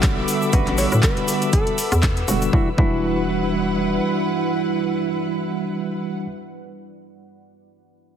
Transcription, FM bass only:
0.00 0.25 A1 medium
0.53 0.64 A1 loud
0.67 0.87 A1 medium
0.92 1.01 A2 medium
1.92 2.25 E2 medium
2.28 2.49 E1 medium
2.53 2.68 E1 loud
2.78 3.99 E1 loud

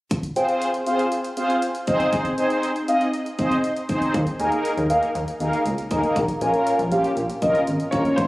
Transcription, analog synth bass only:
4.14 4.24 D#2 loud
4.40 4.49 D#2 loud
4.77 4.87 D#2 medium
4.90 4.99 D#2 loud
5.15 5.25 D#2 loud
5.40 5.50 D#2 medium
5.66 5.75 C#2 medium
5.91 6.01 D#2 medium
6.16 6.26 A#1 loud
6.41 6.51 A#1 medium
6.79 6.89 A#1 loud
6.92 7.01 A#1 medium
7.17 7.26 A#1 loud
7.42 7.52 A#1 medium
7.67 7.77 G#1 medium
7.93 8.02 A#1 medium
8.18 8.27 F1 loud

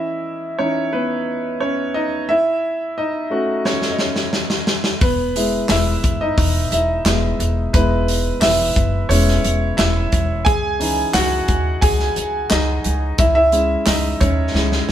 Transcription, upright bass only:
5.01 5.57 E1 medium
5.70 5.98 E1 loud
6.04 6.32 F#1 medium
6.37 6.66 E1 loud
6.71 6.99 E1 medium
7.05 7.33 E1 medium
7.40 7.68 E1 loud
7.74 8.30 E1 loud
8.42 8.70 E1 loud
8.76 9.04 F#1 loud
9.09 9.38 E1 loud
9.44 9.72 E1 loud
9.78 10.06 E1 loud
10.13 10.40 E1 loud
10.46 11.02 C#2 loud
11.14 11.42 C#2 loud
11.48 11.76 D#2 medium
11.82 12.10 C#2 loud
12.16 12.44 C#2 medium
12.51 12.79 C#2 loud
12.85 13.13 C#2 loud
13.18 13.74 C#2 loud
13.87 14.15 C#2 loud
14.21 14.49 D#2 medium
14.54 14.82 C#2 loud
14.88 14.92 C#2 medium

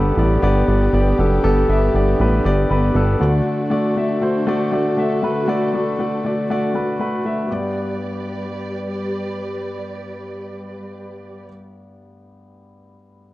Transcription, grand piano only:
0.00 0.14 G2 medium
0.00 0.18 B3 medium
0.00 0.18 G4 medium
0.00 0.12 A4 medium
0.00 2.21 B4 medium
0.18 0.37 B3 medium
0.18 0.37 G4 medium
0.18 0.37 D5 medium
0.43 0.62 B3 loud
0.43 0.62 G4 medium
0.43 0.62 D5 loud
0.68 0.87 B3 medium
0.68 0.87 G4 medium
0.68 0.88 D5 medium
0.93 1.12 B3 medium
0.93 1.12 G4 medium
0.93 1.13 D5 medium
1.18 1.37 B3 medium
1.18 1.38 G4 medium
1.18 1.38 A4 medium
1.43 2.16 G2 medium
1.43 1.62 B3 medium
1.43 1.63 G4 medium
1.43 1.63 A4 loud
1.68 1.88 B3 medium
1.68 1.88 G4 medium
1.68 1.88 E5 medium
1.94 2.13 B3 medium
1.94 2.14 G4 medium
1.94 2.14 D5 medium
2.20 2.39 B3 medium
2.20 2.39 G4 medium
2.20 2.39 B4 medium
2.45 2.64 B3 medium
2.45 2.64 G4 medium
2.45 2.64 D5 loud
2.69 2.89 B3 medium
2.69 2.89 G4 medium
2.69 2.89 B4 medium
2.95 3.14 B3 medium
2.95 3.14 G4 medium
2.95 3.15 A4 medium
3.20 3.92 D3 medium
3.20 3.61 A3 medium
3.20 3.61 F#4 medium
3.20 3.61 D5 medium
3.70 3.89 A3 medium
3.70 3.90 F#4 medium
3.70 3.90 D5 medium
3.96 4.15 A3 medium
3.96 4.16 F#4 medium
3.96 4.16 E5 medium
4.21 4.40 A3 medium
4.21 4.41 F#4 medium
4.21 4.41 C5 medium
4.47 4.66 A3 medium
4.47 4.66 F#4 medium
4.47 4.67 D5 medium
4.72 4.91 A3 medium
4.72 4.91 F#4 medium
4.72 4.92 D5 medium
4.97 5.16 A3 medium
4.97 5.16 F#4 medium
4.97 5.17 E5 medium
5.23 5.95 D3 medium
5.23 5.42 A3 medium
5.23 5.42 F#4 medium
5.23 5.42 B4 medium
5.47 5.67 A3 medium
5.47 5.67 F#4 medium
5.47 5.67 D5 medium
5.74 5.92 A3 medium
5.74 5.93 F#4 medium
5.74 5.93 D5 medium
5.99 6.18 A3 medium
5.99 6.18 F#4 medium
5.99 6.18 D5 medium
6.25 6.43 A3 medium
6.25 6.43 F#4 medium
6.25 6.44 D5 medium
6.50 6.68 A3 medium
6.50 6.69 F#4 medium
6.50 6.69 D5 medium
6.74 6.93 A3 medium
6.74 6.93 F#4 medium
6.74 6.94 B4 medium
6.99 7.18 A3 medium
6.99 7.19 F#4 medium
6.99 7.19 B4 medium
7.25 7.44 A3 medium
7.25 7.44 F#4 medium
7.25 7.44 E5 medium
7.48 11.48 G2 medium
7.48 11.46 B3 medium
7.48 11.48 G4 medium
7.53 11.51 D5 medium

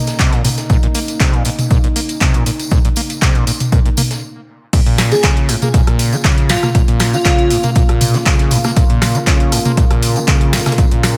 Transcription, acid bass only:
0.19 0.34 C3 loud
0.33 0.42 A#2 loud
0.44 0.49 A#2 medium
0.70 0.77 A#2 loud
0.83 0.87 A#2 medium
0.95 0.99 A#3 medium
1.20 1.35 C3 loud
1.33 1.43 A#2 loud
1.45 1.50 A#2 medium
1.71 1.78 A#2 loud
1.84 1.88 A#2 medium
1.96 2.00 A#3 medium
2.21 2.36 C3 loud
2.34 2.44 A#2 loud
2.46 2.51 A#2 medium
2.71 2.79 A#2 loud
2.85 2.89 A#2 medium
2.97 3.01 A#3 medium
3.22 3.37 C3 loud
3.35 3.45 A#2 loud
3.47 3.51 A#2 medium
3.72 3.80 A#2 loud
3.86 3.89 A#2 medium
3.97 4.02 A#3 medium
4.73 4.80 A#2 medium
4.86 5.13 A#2 medium
5.12 5.16 F3 loud
5.24 5.50 C#3 medium
5.49 5.56 G#2 medium
5.62 5.69 A#3 medium
5.74 5.81 A#2 medium
5.87 6.14 A#2 medium
6.12 6.16 F3 loud
6.24 6.51 C#3 medium
6.50 6.57 G#2 medium
6.63 6.69 A#3 medium
6.75 6.82 A#2 medium
6.88 7.15 A#2 medium
7.13 7.17 F3 loud
7.25 7.52 C#3 medium
7.50 7.58 G#2 medium
7.64 7.70 A#3 medium
7.76 7.83 A#2 medium
7.89 8.16 A#2 medium
8.14 8.18 F3 loud
8.26 8.53 C#3 medium
8.51 8.59 G#2 medium
8.65 8.71 A#3 medium
8.77 8.84 A#2 medium
8.90 9.16 A#2 medium
9.15 9.19 F3 loud
9.27 9.54 C#3 medium
9.52 9.59 G#2 medium
9.65 9.72 A#3 medium
9.77 9.85 A#2 medium
9.91 10.17 A#2 medium
10.16 10.20 F3 loud
10.28 10.54 C#3 medium
10.53 10.60 G#2 medium
10.66 10.73 A#3 medium
10.78 10.85 A#2 medium
10.91 11.17 A#2 medium

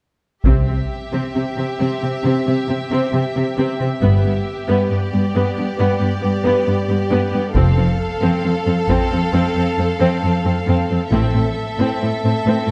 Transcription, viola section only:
0.45 0.66 C4 soft
0.67 0.75 C4 soft
1.12 1.33 C4 soft
1.34 1.42 C4 soft
1.57 1.65 C4 soft
1.79 2.00 C4 soft
2.02 2.10 C4 soft
2.25 2.45 C4 soft
2.47 2.55 C4 soft
2.69 2.77 C4 soft
2.91 3.12 C4 soft
3.14 3.22 C4 soft
3.36 3.44 C4 soft
3.57 3.78 C4 soft
3.79 3.87 C4 soft
4.01 4.22 B3 soft
4.23 4.31 B3 soft
4.67 4.88 B3 soft
4.90 4.98 B3 soft
5.13 5.21 B3 soft
5.34 5.55 B3 soft
5.57 5.65 B3 soft
5.78 5.98 B3 soft
6.00 6.08 B3 soft
6.21 6.29 B3 soft
6.44 6.65 B3 medium
6.66 6.74 B3 soft
6.89 6.97 B3 soft
7.10 7.31 B3 medium
7.32 7.40 B3 soft
7.55 7.75 C4 soft
7.76 7.84 C4 soft
8.21 8.42 C4 soft
8.44 8.52 C4 soft
8.66 8.74 C4 soft
8.89 9.10 C4 medium
9.11 9.19 C4 soft
9.33 9.54 C4 medium
9.56 9.64 C4 soft
9.78 9.86 C4 soft
9.99 10.20 C4 medium
10.22 10.30 C4 soft
10.45 10.53 C4 soft
10.67 10.88 C4 soft
10.90 10.98 C4 soft
11.13 11.33 C4 medium
11.34 11.42 C4 soft
11.79 11.99 C4 soft
12.01 12.09 C4 soft
12.24 12.32 C4 soft
12.46 12.67 C4 soft
12.68 12.71 C4 soft

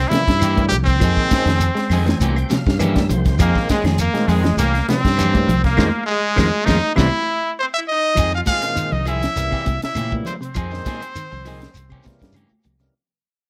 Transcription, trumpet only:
0.08 0.68 E4 loud
0.68 0.76 G4 loud
0.84 2.60 C4 loud
3.41 3.68 A#3 medium
3.71 3.84 G#3 medium
4.00 4.30 A#3 medium
4.28 4.57 G#3 medium
4.58 4.86 A#3 loud
4.89 5.60 C4 loud
5.64 6.05 A#3 medium
6.06 6.67 G#3 loud
6.65 6.95 D#4 loud
6.96 7.52 E4 loud
7.59 7.66 C5 loud
7.74 7.80 E5 loud
7.88 8.30 D#5 loud
8.35 8.41 F5 medium
8.47 8.94 F5 loud
8.92 9.07 D#5 medium
9.08 9.79 E5 loud
9.84 10.14 E5 loud
10.26 10.33 C5 medium
10.42 12.17 C5 medium

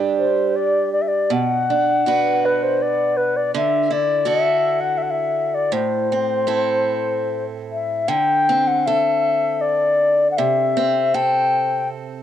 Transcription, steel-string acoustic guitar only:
0.00 0.25 D3 medium
0.00 1.32 G3 medium
0.00 1.70 D4 soft
0.00 1.40 G4 soft
1.30 3.53 B2 medium
1.70 2.06 D4 soft
2.06 3.90 D4 soft
2.06 3.93 F#4 soft
2.06 3.61 B4 medium
3.54 5.73 D3 medium
3.90 4.25 E4 medium
4.25 6.12 E4 medium
4.25 5.80 F#4 medium
4.25 6.47 A4 soft
5.72 8.08 A2 medium
6.12 6.46 C4 soft
6.47 8.49 C4 soft
6.47 8.16 E4 soft
6.47 8.87 A4 medium
8.08 10.38 D3 medium
8.49 10.76 C4 soft
8.87 11.14 A4 medium
10.38 12.23 C3 medium
10.77 12.23 C4 medium
11.14 12.23 A4 medium

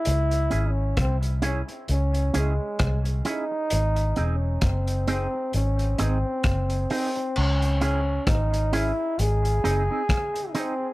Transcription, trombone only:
0.00 0.71 E4 loud
0.70 0.99 C#4 medium
1.01 1.17 C4 medium
1.45 1.61 C#4 medium
1.92 2.40 C#4 medium
2.38 3.03 G#3 medium
3.28 4.29 D#4 loud
4.35 4.66 C#4 medium
4.64 5.09 C4 medium
5.10 5.51 C4 medium
5.56 5.97 C#4 medium
6.02 6.88 C4 medium
6.92 7.39 C4 medium
7.37 7.82 C#4 loud
7.84 8.31 C#4 loud
8.29 8.76 D#4 medium
8.75 9.21 E4 loud
9.20 10.57 G#4 loud
10.56 10.88 C4 loud

